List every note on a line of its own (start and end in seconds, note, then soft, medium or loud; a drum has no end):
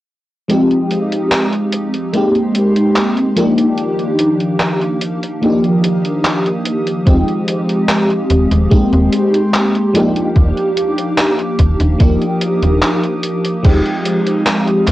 0.48 2.05 F3 medium
0.48 2.06 G#3 medium
0.48 3.35 G#3 medium
0.48 2.06 C4 medium
0.48 3.35 D#4 medium
0.48 2.06 D#4 medium
0.48 2.07 G4 medium
0.48 2.13 F5 medium
0.48 2.13 D#6 medium
0.48 closed hi-hat medium
0.71 closed hi-hat soft
0.91 closed hi-hat medium
1.12 closed hi-hat medium
1.32 clap loud
1.32 closed hi-hat soft
1.53 closed hi-hat soft
1.72 closed hi-hat medium
1.94 closed hi-hat soft
2.13 3.29 G#3 medium
2.13 3.29 A#3 medium
2.13 3.29 C4 medium
2.13 3.30 D#4 medium
2.13 3.30 G4 medium
2.13 3.36 G5 medium
2.13 3.36 C6 medium
2.13 closed hi-hat medium
2.35 closed hi-hat soft
2.55 closed hi-hat medium
2.76 closed hi-hat medium
2.96 clap loud
2.96 closed hi-hat medium
3.17 closed hi-hat soft
3.36 5.41 D#3 medium
3.36 5.34 F3 medium
3.36 5.34 A#3 medium
3.36 5.35 D4 medium
3.36 5.35 D#4 medium
3.36 5.41 G4 medium
3.36 5.35 G4 medium
3.36 8.68 F5 medium
3.36 7.03 D6 medium
3.36 closed hi-hat medium
3.58 closed hi-hat medium
3.78 closed hi-hat soft
3.99 closed hi-hat soft
4.19 closed hi-hat medium
4.40 closed hi-hat medium
4.60 clap loud
4.60 closed hi-hat medium
4.81 closed hi-hat soft
5.01 closed hi-hat medium
5.23 closed hi-hat soft
5.41 7.05 D#3 medium
5.41 6.98 F3 medium
5.41 6.99 A#3 medium
5.41 6.99 D4 medium
5.41 6.99 D#4 medium
5.41 7.00 G4 medium
5.41 7.06 A#4 medium
5.41 8.68 D#6 medium
5.41 closed hi-hat medium
5.64 closed hi-hat soft
5.84 closed hi-hat medium
6.05 closed hi-hat medium
6.25 clap loud
6.25 closed hi-hat medium
6.46 closed hi-hat soft
6.66 closed hi-hat medium
6.87 closed hi-hat medium
7.06 7.24 D#1 loud
7.06 8.63 F3 medium
7.06 8.63 G#3 medium
7.06 9.92 G#3 medium
7.06 8.64 C4 medium
7.06 8.64 D#4 medium
7.06 8.64 G4 medium
7.06 kick loud
7.06 closed hi-hat medium
7.28 closed hi-hat soft
7.48 closed hi-hat medium
7.69 closed hi-hat soft
7.89 clap loud
7.89 closed hi-hat soft
8.10 closed hi-hat soft
8.30 8.47 D#1 medium
8.30 closed hi-hat medium
8.51 8.67 D#1 loud
8.51 closed hi-hat soft
8.70 9.86 G#3 medium
8.70 9.86 A#3 medium
8.70 9.87 C4 medium
8.70 9.87 D#4 medium
8.70 9.87 G4 medium
8.70 9.93 G5 medium
8.70 9.93 C6 medium
8.70 kick loud
8.70 closed hi-hat medium
8.93 9.08 D#1 loud
8.93 closed hi-hat soft
9.12 closed hi-hat medium
9.34 closed hi-hat medium
9.54 clap loud
9.54 closed hi-hat soft
9.75 closed hi-hat soft
9.93 11.91 F3 medium
9.93 11.92 A#3 medium
9.93 11.92 D4 medium
9.93 11.93 D#4 medium
9.93 11.98 G4 medium
9.93 11.93 G4 loud
9.93 13.60 F5 medium
9.93 11.98 D6 medium
9.93 closed hi-hat medium
10.16 closed hi-hat soft
10.36 10.52 D#1 loud
10.36 kick loud
10.36 closed hi-hat medium
10.57 closed hi-hat soft
10.77 closed hi-hat medium
10.98 closed hi-hat medium
11.18 clap loud
11.18 closed hi-hat soft
11.39 closed hi-hat soft
11.59 11.76 D#1 medium
11.59 kick medium
11.59 closed hi-hat medium
11.80 11.96 D#1 medium
11.80 closed hi-hat soft
11.98 12.17 D#1 medium
11.98 13.56 F3 medium
11.98 13.56 A#3 medium
11.98 13.57 D4 medium
11.98 13.57 D#4 medium
11.98 13.57 G4 medium
11.98 13.63 A#4 medium
11.98 13.63 D6 medium
11.98 13.63 D#6 medium
11.98 kick loud
11.98 closed hi-hat soft
12.21 closed hi-hat soft
12.41 closed hi-hat medium
12.62 12.82 D#1 medium
12.62 closed hi-hat medium
12.82 clap loud
12.82 closed hi-hat medium
13.04 closed hi-hat soft
13.23 closed hi-hat medium
13.45 closed hi-hat soft
13.62 13.81 D#1 loud
13.62 14.92 F3 medium
13.62 14.92 G#3 medium
13.62 14.92 C4 medium
13.62 14.92 D#4 medium
13.62 14.92 G4 medium
13.62 14.92 F5 medium
13.62 14.92 D#6 medium
13.62 kick loud
13.62 closed hi-hat medium
13.62 crash medium
13.86 closed hi-hat soft
14.05 closed hi-hat medium
14.27 closed hi-hat medium
14.46 clap loud
14.46 closed hi-hat medium
14.67 closed hi-hat soft
14.87 14.92 D#1 medium
14.87 clap soft
14.87 closed hi-hat medium